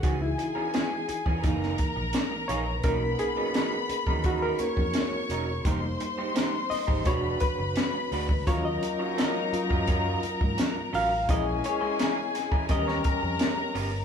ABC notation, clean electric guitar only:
X:1
M:4/4
L:1/16
Q:1/4=85
K:D#m
V:1 name="Clean electric guitar"
[=E,B,CG] z2 [E,B,CA] [E,B,CG] z2 [E,B,CG] [E,A,DG]2 z4 [E,A,DG] z | [F,CDA] z2 [F,CDB] [F,CDA] z2 [F,CDA] [F,CDA]2 z4 [F,CDA] z | [_A,_E=G_B] z2 [A,EG=c] [A,EGB] z2 [A,EGB] [^G,=DF=B]2 z4 [G,DFB] z | [F,CEA] z2 [F,CEc] [F,CEA] z2 [F,CEA] [F,CEA]2 z4 [F,CEA] z |
[G,C=EA] z2 [G,CE^B] [G,CEA] z2 [G,CEA] [=B,C=GA]2 z4 [B,CGA] z |]